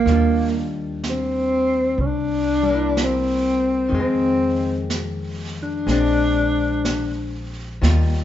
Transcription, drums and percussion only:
0.07 brush sweep, snare
1.04 brush sweep, snare, hi-hat pedal
2.01 brush sweep
2.97 brush sweep, snare, hi-hat pedal
3.93 brush sweep
4.90 brush sweep, snare, hi-hat pedal
5.88 brush sweep, snare
6.85 brush sweep, snare, hi-hat pedal
7.83 brush sweep, snare

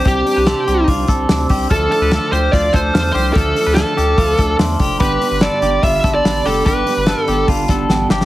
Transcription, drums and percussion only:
0.05 kick, hi-hat pedal, open hi-hat
0.26 hi-hat pedal, open hi-hat
0.46 snare, hi-hat pedal, open hi-hat
0.68 hi-hat pedal, open hi-hat
0.88 kick, hi-hat pedal, open hi-hat
1.07 kick, hi-hat pedal, open hi-hat
1.29 snare, hi-hat pedal, open hi-hat
1.49 kick, hi-hat pedal, open hi-hat
1.71 kick, hi-hat pedal, open hi-hat
1.91 hi-hat pedal, open hi-hat
2.11 snare, hi-hat pedal, open hi-hat
2.33 hi-hat pedal, open hi-hat
2.53 kick, hi-hat pedal, open hi-hat
2.73 kick, hi-hat pedal, open hi-hat
2.95 snare, hi-hat pedal, open hi-hat
3.15 hi-hat pedal, open hi-hat
3.35 kick, hi-hat pedal, open hi-hat
3.56 hi-hat pedal, open hi-hat
3.76 snare, hi-hat pedal, open hi-hat
3.98 hi-hat pedal, open hi-hat
4.18 kick, hi-hat pedal, open hi-hat
4.38 kick, hi-hat pedal, open hi-hat
4.59 snare, hi-hat pedal, open hi-hat
4.79 kick, hi-hat pedal, open hi-hat
5.00 kick, hi-hat pedal, open hi-hat
5.21 hi-hat pedal, open hi-hat
5.41 snare, hi-hat pedal, open hi-hat
5.62 hi-hat pedal, open hi-hat
5.83 kick, hi-hat pedal, open hi-hat
6.04 kick, snare, hi-hat pedal, open hi-hat
6.25 snare, hi-hat pedal, open hi-hat
6.45 hi-hat pedal, open hi-hat
6.66 kick, hi-hat pedal, open hi-hat
6.86 hi-hat pedal, open hi-hat
7.06 snare, hi-hat pedal, open hi-hat
7.28 hi-hat pedal, open hi-hat
7.48 kick, hi-hat pedal, open hi-hat
7.68 kick, snare, hi-hat pedal, open hi-hat
7.90 snare
8.10 snare
8.21 snare

